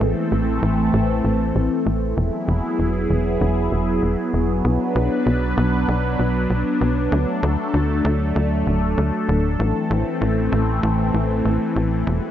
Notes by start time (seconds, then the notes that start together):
Already playing: E3 A3 C4 A4
0.01 A1
0.32 A1
0.63 A1
0.94 A1
1.24 A1
1.55 A1
1.86 A1
2.17 E1 F#3 B3 E4 G#4
2.48 E1
2.79 E1
3.10 E1
3.41 E1
3.72 E1
4.03 E1
4.34 E1
4.65 B1 D4 B4
4.96 B1
5.26 B1
5.57 B1
5.88 B1
6.19 B1
6.50 B1
6.81 B1
7.12 D2 A3 A4
7.43 D2
7.74 D2
8.05 D2
8.36 D2
8.67 D1
8.98 D2
9.29 D1
9.60 A1 E3 A3 C4
9.91 A1
10.21 A1
10.52 A1
10.83 A1
11.14 A1
11.45 A1
11.76 A1
12.07 E1 G#3 B3 F#4